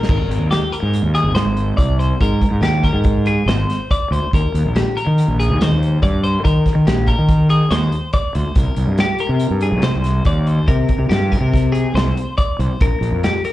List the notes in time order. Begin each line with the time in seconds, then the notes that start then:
0.03 snare
0.09 G#1 A#4, kick, crash
0.28 G#1, closed hi-hat
0.39 D#2
0.51 G4, snare, closed hi-hat
0.72 A#4, closed hi-hat
0.83 G#2
0.93 closed hi-hat
1.03 D#2
1.15 G#4, closed hi-hat
1.24 G#1
1.35 G#2 C5, snare, closed hi-hat
1.45 G#1
1.57 closed hi-hat
1.77 C2 D5, kick, closed hi-hat
1.99 C5, closed hi-hat
2.21 G#2 A#4, kick, closed hi-hat
2.42 kick, closed hi-hat
2.51 G#2
2.61 D#2 G4, snare, closed hi-hat
2.84 A#4, kick, snare, closed hi-hat
2.93 G#2
3.04 kick, closed hi-hat
3.26 G#4, closed hi-hat
3.46 G#1 C5, snare, closed hi-hat
3.70 snare, closed hi-hat
3.91 D5, kick, closed hi-hat
4.11 D2 C5, closed hi-hat
4.33 D#2 A#4, kick, closed hi-hat
4.54 D#2, closed hi-hat
4.65 A#1
4.76 G4, snare, closed hi-hat
4.97 A#4, closed hi-hat
5.07 D#3
5.18 closed hi-hat
5.28 A#1
5.40 G#4, closed hi-hat
5.49 D#2
5.60 D#3 C5, snare, closed hi-hat
5.72 D#2
5.83 closed hi-hat
6.03 G2 D5, kick, closed hi-hat
6.24 C5, closed hi-hat
6.44 D#3 A#4, kick, closed hi-hat
6.66 kick, snare, closed hi-hat
6.75 D#3
6.87 A#1 G4, snare, closed hi-hat
7.07 A#4, kick, closed hi-hat
7.19 D#3
7.29 kick, closed hi-hat
7.50 G#4, closed hi-hat
7.71 D#2 C5, snare, closed hi-hat
7.92 closed hi-hat
8.13 D5, kick, closed hi-hat
8.35 D2 C5, closed hi-hat
8.55 C2 A#4, kick, closed hi-hat
8.76 C2, closed hi-hat
8.87 G2
8.98 G4, snare, closed hi-hat
9.18 A#4, closed hi-hat
9.29 C3
9.40 closed hi-hat
9.50 G2
9.61 G#4, closed hi-hat
9.72 C2
9.82 C3 C5, snare, closed hi-hat
9.95 C2
10.04 snare, closed hi-hat
10.25 D#2 D5, kick, closed hi-hat
10.47 C5, closed hi-hat
10.68 C3 A#4, kick, closed hi-hat
10.89 kick, closed hi-hat
10.99 C3
11.09 G2 G4, snare, closed hi-hat
11.32 A#4, kick, snare, closed hi-hat
11.41 C3
11.54 kick, snare, closed hi-hat
11.72 G#4, closed hi-hat
11.94 C2 C5, snare, closed hi-hat
12.17 closed hi-hat
12.38 D5, kick, closed hi-hat
12.59 C2 C5, closed hi-hat
12.81 A#1 A#4, kick, closed hi-hat
13.01 A#1, closed hi-hat
13.12 F2
13.23 G4, snare, closed hi-hat
13.44 A#4, closed hi-hat